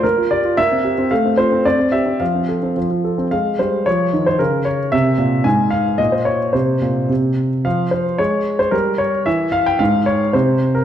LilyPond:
<<
  \new Staff \with { instrumentName = "Grand piano" } { \time 2/4 \key f \major \tempo 4 = 111 bes'8 d''8 e''4 | f''8 c''8 d''8 e''8 | f''4 r4 | \key f \minor f''8 c''8 des''8. c''16 |
bes'8 des''8 e''4 | aes''8 f''8 ees''16 c''16 des''8 | c''4 r4 | f''8 c''8 des''8. c''16 |
bes'8 des''8 e''8 f''16 g''16 | f''8 des''8 c''8. bes'16 | }
  \new Staff \with { instrumentName = "Grand piano" } { \time 2/4 \key f \major bes16 f'16 g'16 f'16 bes16 c'16 g'16 c'16 | a16 c'16 f'16 c'16 c'16 c'16 g'16 c'16 | f16 c'16 a'16 c'16 f16 f'16 a'16 c'16 | \key f \minor aes8 g8 f8 ees8 |
des4 c8 bes,8 | aes,4 bes,4 | c8 bes,8 c4 | f4 aes4 |
g4 e4 | aes,4 c4 | }
>>